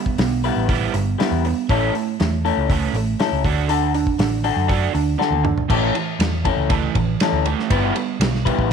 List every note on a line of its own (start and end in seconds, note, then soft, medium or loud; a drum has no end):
0.00 0.16 G3 medium
0.00 0.17 B3 medium
0.06 kick medium
0.18 0.49 B1 medium
0.18 0.42 G3 medium
0.18 0.42 B3 medium
0.18 muted clean electric guitar stroke soft
0.18 snare loud
0.18 open hi-hat medium
0.44 0.67 G3 medium
0.44 0.70 G3 medium
0.44 0.67 B3 medium
0.44 0.70 B3 medium
0.44 0.69 E4 medium
0.44 0.69 B4 medium
0.44 open hi-hat soft
0.56 0.87 A1 medium
0.69 0.93 G3 medium
0.69 0.93 B3 medium
0.69 0.93 E4 medium
0.69 muted clean electric guitar stroke soft
0.69 kick loud
0.69 open hi-hat medium
0.94 1.14 G1 medium
0.94 1.17 G3 medium
0.94 1.17 B3 medium
0.94 muted clean electric guitar stroke soft
0.94 open hi-hat soft
1.18 1.44 G3 medium
1.18 1.42 G3 medium
1.18 1.44 B3 medium
1.18 1.42 B3 medium
1.18 1.44 E4 medium
1.18 1.44 B4 medium
1.18 snare medium
1.18 open hi-hat medium
1.31 1.52 E2 medium
1.45 1.67 G3 medium
1.45 1.68 B3 medium
1.45 muted clean electric guitar stroke soft
1.45 open hi-hat soft
1.69 1.89 A1 medium
1.69 1.92 A2 medium
1.69 1.94 A3 medium
1.69 1.93 A3 medium
1.69 1.94 C#4 medium
1.69 1.93 C#4 loud
1.69 1.93 E4 medium
1.69 1.93 A4 medium
1.69 kick loud
1.69 open hi-hat medium
1.94 2.16 A2 medium
1.94 2.17 A3 medium
1.94 muted clean electric guitar stroke soft
1.94 open hi-hat soft
2.20 2.50 E2 medium
2.20 2.42 A2 medium
2.20 2.42 A3 medium
2.20 muted clean electric guitar stroke soft
2.20 snare loud
2.20 open hi-hat medium
2.45 2.67 A2 medium
2.45 2.67 A3 medium
2.45 2.70 A3 medium
2.45 2.70 C#4 medium
2.45 2.70 E4 medium
2.45 2.70 A4 medium
2.45 open hi-hat soft
2.57 2.87 C#2 medium
2.70 2.93 A2 medium
2.70 2.93 A3 medium
2.70 2.94 C#4 medium
2.70 muted clean electric guitar stroke soft
2.70 kick medium
2.70 open hi-hat medium
2.93 3.14 A1 medium
2.93 3.18 A2 medium
2.93 3.18 A3 medium
2.93 muted clean electric guitar stroke soft
2.93 open hi-hat soft
3.20 3.43 A2 medium
3.20 3.45 A3 medium
3.20 3.43 A3 medium
3.20 3.45 C#4 medium
3.20 3.44 E4 medium
3.20 3.43 A4 medium
3.20 snare medium
3.20 open hi-hat medium
3.32 3.42 C#2 medium
3.44 4.05 D2 medium
3.44 3.68 D3 medium
3.44 3.68 D4 medium
3.44 3.69 F#4 medium
3.44 muted clean electric guitar stroke soft
3.44 kick medium
3.44 open hi-hat soft
3.68 3.94 D3 medium
3.68 3.93 D3 medium
3.68 3.94 D4 medium
3.68 3.92 D4 medium
3.68 3.93 F#4 medium
3.68 3.93 A4 medium
3.68 open hi-hat medium
3.94 4.17 D3 soft
3.94 4.17 D4 medium
3.94 muted clean electric guitar stroke soft
3.94 open hi-hat soft
4.07 kick medium
4.19 4.49 A1 medium
4.19 4.42 D3 medium
4.19 4.42 D4 medium
4.19 muted clean electric guitar stroke soft
4.19 snare loud
4.19 open hi-hat medium
4.44 4.67 D3 medium
4.44 4.69 D3 medium
4.44 4.67 D4 medium
4.44 4.69 D4 medium
4.44 4.69 F#4 medium
4.44 4.69 A4 medium
4.44 open hi-hat medium
4.56 4.87 F#2 medium
4.68 4.92 D3 medium
4.68 4.92 D4 medium
4.68 4.93 F#4 medium
4.68 muted clean electric guitar stroke soft
4.68 kick medium
4.68 open hi-hat medium
4.93 5.15 D2 medium
4.93 5.16 D3 medium
4.93 5.17 D4 medium
4.93 muted clean electric guitar stroke soft
4.93 open hi-hat soft
5.18 5.42 D3 medium
5.18 5.44 D3 medium
5.18 5.42 D4 medium
5.18 5.44 D4 medium
5.18 5.44 F#4 medium
5.18 5.43 A4 medium
5.18 snare soft
5.31 5.51 D2 medium
5.31 high tom medium
5.43 5.67 D3 medium
5.43 5.67 D4 medium
5.43 muted clean electric guitar stroke soft
5.43 mid tom medium
5.58 floor tom medium
5.68 5.90 A1 medium
5.68 5.93 A2 medium
5.68 5.93 E3 medium
5.68 5.93 A3 medium
5.68 5.95 A3 medium
5.68 5.95 C#4 medium
5.68 5.94 E4 medium
5.68 5.94 A4 medium
5.68 kick loud
5.68 crash loud
5.95 6.17 A2 medium
5.95 6.18 E3 medium
5.95 muted clean electric guitar stroke soft
5.95 ride medium
6.19 6.50 E2 medium
6.19 6.43 A2 medium
6.19 6.43 E3 medium
6.19 muted clean electric guitar stroke soft
6.19 snare loud
6.19 ride medium
6.44 6.67 A2 medium
6.44 6.68 E3 medium
6.44 6.70 A3 medium
6.44 6.70 C#4 medium
6.44 6.70 E4 medium
6.44 6.70 A4 medium
6.44 kick medium
6.44 ride medium
6.57 6.87 C#2 medium
6.69 6.93 A2 medium
6.69 6.93 E3 medium
6.69 6.94 A3 medium
6.69 muted clean electric guitar stroke soft
6.69 kick loud
6.69 ride medium
6.95 7.15 A1 loud
6.95 7.18 A2 medium
6.95 7.18 E3 medium
6.95 muted clean electric guitar stroke soft
6.95 kick medium
6.95 ride medium
7.20 7.43 A2 medium
7.20 7.44 E3 medium
7.20 7.46 A3 medium
7.20 7.46 C#4 medium
7.20 7.45 E4 medium
7.20 7.45 A4 medium
7.20 snare medium
7.20 ride medium
7.32 7.53 D2 medium
7.46 7.69 A2 medium
7.46 7.69 E3 medium
7.46 7.70 A3 medium
7.46 muted clean electric guitar stroke soft
7.46 ride medium
7.59 snare soft
7.70 7.90 G1 medium
7.70 7.95 G3 medium
7.70 7.94 G3 medium
7.70 7.95 B3 medium
7.70 7.94 E4 medium
7.70 7.95 E4 medium
7.70 7.94 B4 medium
7.70 kick loud
7.70 ride medium
7.95 8.18 G3 medium
7.95 8.18 B3 medium
7.95 muted clean electric guitar stroke soft
7.95 ride medium
8.20 8.50 B1 loud
8.20 8.43 G3 medium
8.20 8.43 B3 medium
8.20 muted clean electric guitar stroke soft
8.20 snare loud
8.20 ride loud
8.35 snare soft
8.45 8.68 G3 medium
8.45 8.70 G3 medium
8.45 8.68 B3 medium
8.45 8.70 B3 medium
8.45 8.71 E4 medium
8.45 8.70 B4 medium
8.45 kick medium
8.45 ride medium
8.59 8.73 A1 medium
8.59 kick medium